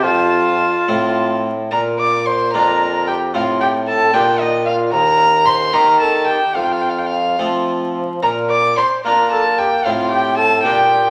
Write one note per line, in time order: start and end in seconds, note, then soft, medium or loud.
0.03 0.72 F2 medium
0.03 0.84 F2 soft
0.03 1.43 F4 medium
0.03 1.27 A5 medium
0.88 1.68 A2 soft
0.88 1.71 A2 medium
0.88 1.49 A3 soft
0.88 1.49 C4 soft
0.88 1.49 F4 soft
1.71 2.50 A#2 soft
1.71 2.56 A#2 soft
1.71 2.01 A#4 medium
1.71 1.79 A#5 medium
1.99 2.28 D5 medium
1.99 2.27 D6 medium
2.26 2.54 C5 medium
2.26 2.53 C6 medium
2.53 3.31 F2 soft
2.53 3.35 F2 medium
2.53 3.12 A#3 soft
2.53 3.13 D4 soft
2.53 3.13 F4 soft
2.53 3.10 A#4 medium
2.53 3.07 A#5 medium
3.07 3.36 G4 medium
3.07 3.15 G5 medium
3.34 4.09 A2 soft
3.34 4.13 A2 medium
3.34 4.09 C4 soft
3.34 3.61 F4 soft
3.34 4.10 F4 soft
3.34 3.43 F5 medium
3.61 3.73 G4 medium
3.61 3.69 G5 medium
3.88 4.13 A4 medium
3.88 4.15 A5 medium
4.14 4.89 A#2 soft
4.14 4.91 A#2 medium
4.14 4.89 A#3 soft
4.14 4.89 D4 soft
4.14 4.90 F4 soft
4.14 4.26 G4 medium
4.14 4.42 G5 medium
4.39 4.51 D#4 medium
4.39 4.65 D#5 medium
4.66 4.95 F4 medium
4.66 4.74 F5 medium
4.92 5.69 D#2 soft
4.92 5.72 D#2 medium
4.92 5.46 A#4 medium
4.92 5.47 A#5 medium
5.46 5.76 C5 medium
5.46 5.75 C6 medium
5.73 6.52 D#3 soft
5.73 6.39 D#3 medium
5.73 6.33 A#3 soft
5.73 6.33 D#4 soft
5.73 6.33 G4 soft
5.73 6.03 A#4 medium
5.73 6.00 A#5 medium
6.01 6.29 A4 medium
6.01 6.27 A5 medium
6.27 6.56 G4 medium
6.27 6.57 G5 medium
6.56 7.35 F2 soft
6.56 7.38 F2 medium
6.56 7.38 F4 medium
6.56 6.66 F5 soft
6.64 6.74 G5 medium
6.73 6.83 F5 medium
6.82 6.91 G5 medium
6.90 7.00 F5 soft
6.99 7.08 G5 soft
7.07 7.40 F5 medium
7.39 8.21 F3 soft
7.39 8.18 F3 soft
7.39 7.99 A3 soft
7.39 7.99 C4 soft
7.39 8.00 F4 soft
8.22 8.75 A#2 medium
8.22 8.73 A#2 soft
8.22 8.52 A#4 medium
8.22 8.31 A#5 medium
8.50 8.79 D5 medium
8.50 8.76 D6 medium
8.77 9.04 C5 medium
8.77 8.85 C6 medium
9.04 9.82 A#3 medium
9.04 9.82 A#3 soft
9.04 9.64 D4 soft
9.04 9.64 F4 soft
9.04 9.31 A#4 medium
9.04 9.31 A#5 medium
9.32 9.44 A4 medium
9.32 9.60 A5 medium
9.59 9.71 G4 medium
9.59 9.87 G5 medium
9.85 10.67 A2 medium
9.85 10.61 A2 soft
9.85 10.61 C4 soft
9.85 10.13 F4 medium
9.85 10.61 F4 soft
9.85 10.11 F5 medium
10.11 10.39 G4 medium
10.11 10.37 G5 medium
10.37 10.63 A4 medium
10.37 10.63 A5 medium
10.64 11.10 A#2 soft
10.64 11.10 A#2 medium
10.64 11.10 A#3 soft
10.64 11.10 D4 soft
10.64 11.10 F4 soft
10.64 11.10 G4 medium
10.64 11.10 G5 medium